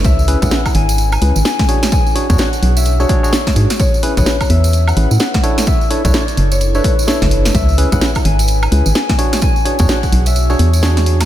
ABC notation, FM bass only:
X:1
M:4/4
L:1/16
Q:"Swing 16ths" 1/4=128
K:Emix
V:1 name="FM bass" clef=bass
C,,3 C,, z2 G,,,4 C,, G,,, z4 | z3 E,, z2 B,,,4 z4 G,, z | z3 A,,, z2 E,,4 A,,, A,, z4 | z3 B,,, z2 F,,,4 z3 F,,,3 |
C,,3 C,, z2 G,,,4 C,, G,,, z4 | z3 E,, z2 B,,,4 E,,6 |]